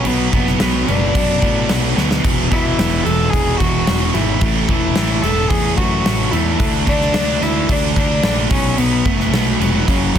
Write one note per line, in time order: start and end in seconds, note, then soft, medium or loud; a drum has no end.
0.05 0.28 B1 medium
0.05 0.31 B2 loud
0.05 0.32 F#3 loud
0.05 0.32 B3 loud
0.05 0.33 B3 loud
0.05 crash medium
0.32 0.56 F#1 loud
0.32 0.59 B2 medium
0.32 0.59 F#3 medium
0.32 0.60 B3 loud
0.32 0.92 B3 loud
0.32 kick medium
0.32 crash medium
0.47 snare soft
0.60 0.83 B1 medium
0.60 0.86 B2 medium
0.60 0.87 F#3 loud
0.60 0.87 B3 loud
0.60 snare loud
0.60 crash medium
0.88 1.11 F#1 medium
0.88 1.12 B2 medium
0.88 1.13 F#3 medium
0.88 1.14 B3 loud
0.88 1.98 D4 loud
0.88 crash medium
1.13 1.37 F#2 loud
1.13 1.41 B2 medium
1.13 1.42 F#3 medium
1.13 1.43 B3 medium
1.13 kick medium
1.13 crash medium
1.42 1.65 A2 medium
1.42 1.69 B2 medium
1.42 1.69 F#3 medium
1.42 1.69 B3 loud
1.42 kick medium
1.42 crash medium
1.69 1.92 B1 medium
1.69 1.95 B2 medium
1.69 1.96 F#3 loud
1.69 1.97 B3 loud
1.69 snare loud
1.69 crash medium
1.96 2.19 D2 loud
1.96 2.22 B2 medium
1.96 2.22 F#3 medium
1.96 4.42 B3 loud
1.96 snare medium
2.11 snare loud
2.24 2.47 E1 loud
2.24 2.49 E2 medium
2.24 2.49 B2 loud
2.24 2.51 E3 loud
2.24 kick loud
2.24 splash medium
2.24 crash medium
2.50 2.74 E1 loud
2.50 2.78 E2 medium
2.50 2.78 B2 medium
2.50 2.79 E3 loud
2.50 3.05 E4 loud
2.50 kick medium
2.50 crash medium
2.79 3.01 E1 loud
2.79 3.05 E2 medium
2.79 3.05 B2 medium
2.79 3.07 E3 loud
2.79 snare loud
2.79 crash loud
3.03 3.28 E1 medium
3.03 3.33 E2 medium
3.03 3.33 B2 medium
3.03 3.31 A4 loud
3.03 crash medium
3.08 3.34 E3 loud
3.30 3.56 E1 loud
3.30 3.59 G#4 loud
3.30 kick medium
3.34 3.59 E2 medium
3.34 3.59 B2 medium
3.34 3.60 E3 medium
3.34 crash medium
3.57 3.83 E1 loud
3.57 3.87 E2 medium
3.57 3.88 B2 medium
3.57 3.88 E3 medium
3.57 4.15 F#4 loud
3.57 kick medium
3.57 crash medium
3.87 4.10 E1 loud
3.87 4.13 E2 medium
3.87 4.13 B2 loud
3.87 4.15 E3 loud
3.87 snare loud
3.87 crash medium
4.14 4.37 G#1 loud
4.14 4.40 E2 medium
4.14 4.40 B2 medium
4.14 4.42 E3 loud
4.14 4.41 E4 medium
4.14 crash medium
4.41 4.64 A1 loud
4.41 4.67 A2 loud
4.41 4.69 E3 loud
4.41 4.69 A3 loud
4.41 kick loud
4.41 crash medium
4.68 4.92 E1 loud
4.68 4.95 A2 loud
4.68 4.96 E3 medium
4.68 4.96 A3 loud
4.68 5.24 E4 loud
4.68 kick medium
4.68 crash medium
4.95 5.19 A1 medium
4.95 5.22 A2 loud
4.95 5.22 E3 medium
4.95 5.23 A3 loud
4.95 snare loud
4.95 crash medium
5.22 5.46 E1 loud
5.22 5.50 A2 loud
5.22 5.50 E3 loud
5.22 5.50 A3 loud
5.22 5.49 A4 loud
5.22 crash medium
5.48 5.73 E2 loud
5.48 5.78 A2 medium
5.48 5.77 E3 medium
5.48 5.78 A3 medium
5.48 5.76 G#4 loud
5.48 kick loud
5.48 crash medium
5.76 6.01 F#2 loud
5.76 6.04 A2 loud
5.76 6.04 E3 loud
5.76 6.04 A3 loud
5.76 6.32 F#4 loud
5.76 kick medium
5.76 crash medium
6.05 6.28 A1 loud
6.05 6.31 A2 loud
6.05 6.32 E3 loud
6.05 6.32 A3 loud
6.05 snare loud
6.05 crash loud
6.31 6.55 E2 loud
6.31 6.58 A2 medium
6.31 6.59 E3 medium
6.31 6.58 A3 loud
6.31 6.59 E4 medium
6.31 crash medium
6.59 6.83 D2 loud
6.59 6.85 D3 loud
6.59 6.86 A3 loud
6.59 6.86 D4 loud
6.59 kick loud
6.59 crash loud
6.87 7.10 D2 loud
6.87 7.13 D3 medium
6.87 7.13 A3 loud
6.87 7.13 D4 loud
6.87 7.45 D4 loud
6.87 kick medium
6.87 crash medium
7.01 snare soft
7.14 7.37 D2 loud
7.14 7.40 D3 medium
7.14 7.40 A3 loud
7.14 7.41 D4 loud
7.14 snare loud
7.14 crash medium
7.41 7.64 D2 loud
7.41 7.67 D3 loud
7.41 7.68 A3 loud
7.41 7.68 D4 loud
7.41 7.73 E4 loud
7.41 snare soft
7.41 crash medium
7.68 7.92 D2 medium
7.68 7.95 D3 medium
7.68 7.95 A3 medium
7.68 7.96 D4 medium
7.68 7.96 D4 loud
7.68 kick loud
7.68 crash loud
7.96 8.19 D2 loud
7.96 8.22 D3 loud
7.96 8.22 A3 loud
7.96 8.23 D4 loud
7.96 8.48 D4 loud
7.96 kick medium
7.96 crash medium
8.23 8.46 A#1 medium
8.23 8.50 D3 loud
8.23 8.50 A3 loud
8.23 8.50 D4 loud
8.23 snare loud
8.23 crash loud
8.50 8.74 B1 loud
8.50 8.76 B2 loud
8.50 8.76 F#3 loud
8.50 8.77 B3 loud
8.50 8.79 C#4 loud
8.50 kick loud
8.50 crash loud
8.78 9.01 B1 loud
8.78 9.04 B2 loud
8.78 9.04 F#3 loud
8.78 9.08 B3 loud
8.78 9.05 B3 loud
8.78 crash medium
9.05 9.28 F#1 loud
9.05 9.31 B2 medium
9.05 9.31 F#3 medium
9.05 9.61 A3 loud
9.05 9.31 B3 loud
9.05 kick medium
9.05 crash medium
9.20 snare soft
9.31 9.55 B1 loud
9.31 9.59 B2 medium
9.31 9.60 F#3 loud
9.31 9.61 B3 medium
9.31 snare loud
9.31 crash medium
9.60 9.83 F1 loud
9.60 9.87 B2 medium
9.60 9.87 F#3 loud
9.60 9.87 G#3 medium
9.60 9.87 B3 loud
9.60 crash medium
9.87 10.11 F#1 medium
9.87 10.13 F#2 medium
9.87 10.14 C#3 medium
9.87 10.19 F#3 medium
9.87 10.14 F#3 loud
9.87 kick medium
9.87 crash medium
10.15 10.19 F#2 medium
10.15 10.19 C#3 medium
10.15 10.19 F#3 loud